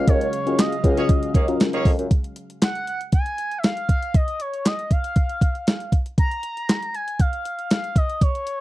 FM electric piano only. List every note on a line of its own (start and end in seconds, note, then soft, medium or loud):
0.00 0.33 C#4 medium
0.00 0.33 F4 medium
0.00 0.33 F#4 medium
0.00 0.33 G#4 medium
0.46 0.76 C#4 medium
0.46 0.76 F4 medium
0.46 0.76 F#4 medium
0.46 0.76 G#4 medium
0.83 0.94 C#4 medium
0.83 0.94 F4 medium
0.83 0.94 F#4 medium
0.83 0.95 G#4 medium
0.97 1.36 C#4 medium
0.97 1.36 F4 medium
0.97 1.36 F#4 medium
0.97 1.37 G#4 medium
1.48 2.11 C#4 medium
1.48 2.11 F4 medium
1.48 2.11 F#4 medium
1.48 2.11 A#4 medium